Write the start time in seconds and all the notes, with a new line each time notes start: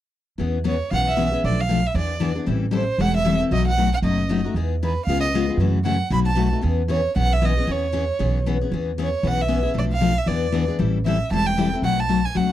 0.38 E2 E3 B3 C#4 G#4
0.64 E3 B3 C#4 G#4 C#5
0.91 B1 E3 B3 C#4 G#4 F5 F#5
1.08 E5
1.17 E3 B3 C#4 G#4
1.32 B3 C#4 G#4
1.44 B1 B2 F3 A3 D4 A4 D5
1.61 F5
1.69 B2 F3 A3 D4 A4
1.87 E5
1.94 E2 E3 B3 D4 G#4 D5
2.20 E3 B3 D4 G#4
2.35 B3 D4 G#4
2.46 A1 E3 G3 C4 E4 A4
2.71 E3 G3 C4 E4 A4
2.75 C5
2.98 E1 E3 G3 C4 E4 A4 F#5
3.17 E5
3.25 E3 G3 C4 E4 A4
3.39 C4 E4 A4
3.51 B1 B2 F#3 A3 D#4 F#4 D#5
3.68 F#5
3.77 B2 F#3 A3 D#4 F#4
3.94 F#5
4.02 F#1 B2 F#3 A3 D#4 F#4 D#5
4.29 B2 F#3 A3 D#4 F#4
4.44 A3 D#4 F#4
4.54 E2 E3 B3 D#4 G#4
4.83 E3 B3 D#4 G#4 B4
5.06 C#2 C#3 G#3 B3 F4 G#4 F5
5.21 D#5
5.34 C#3 G#3 B3 F4 G#4
5.49 B3 F4 G#4
5.57 F#2 C#3 E3 A3 C#4 F#4
5.85 C#3 E3 A3 C#4 F#4 F#5
6.10 B1 B2 F#3 A3 D#4 F#4 B5
6.27 A5
6.35 B2 F#3 A3 D#4 F#4
6.52 A3 D#4
6.61 E2 E3 B3 C#4 G#4
6.88 E3 B3 C#4 G#4 C#5
7.16 B1 E3 B3 C#4 G#4 F#5
7.33 E5
7.42 E3 B3 C#4 G#4 D#5
7.57 B3 C#4 G#4
7.67 E2 E3 B3 C#4 G#4
7.72 C#5
7.93 E3 B3 C#4 G#4
8.19 B1 E3 B3 C#4 G#4
8.46 E3 B3 C#4 G#4
8.61 B3 C#4 G#4
8.71 E2 E3 B3 C#4 G#4
8.98 E3 B3 C#4 G#4
9.02 C#5
9.23 B1 E3 B3 C#4 G#4 F#5
9.42 E5
9.48 E3 B3 C#4 G#4
9.63 B3 C#4 G#4
9.74 B1 B2 F3 A3 D4 A4
9.79 D5
9.92 F5
10.01 B2 F3 A3 D4 A4
10.18 E5
10.26 E2 E3 B3 D4 G#4 D5
10.52 E3 B3 D4 G#4
10.68 B3 D4 G#4
10.79 A1 E3 G3 C4 E4 A4
11.06 E3 G3 C4 E4 A4 E5
11.31 E1 E3 G3 C4 E4 A4 A5
11.46 G5
11.57 E3 G3 C4 E4 A4
11.73 C4 E4 A4
11.82 B1 B2 F#3 A3 D#4 F#4 F#5
12.00 A5
12.09 B2 F#3 A3 D#4 F#4
12.25 G#5
12.35 C#2 B2 F#3 A3 D#4 F#4 F#5